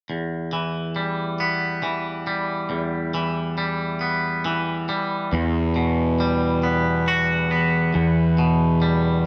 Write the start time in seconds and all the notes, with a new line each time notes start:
0.10 E2
0.53 E3
0.96 G3
1.40 B3
1.83 E3
2.27 G3
2.70 E2
3.14 E3
3.58 G3
4.01 B3
4.45 E3
4.89 G3
5.33 E2
5.76 B2
6.20 G3
6.63 B3
7.08 F#4
7.51 B3
7.94 E2
8.38 B2
8.82 G3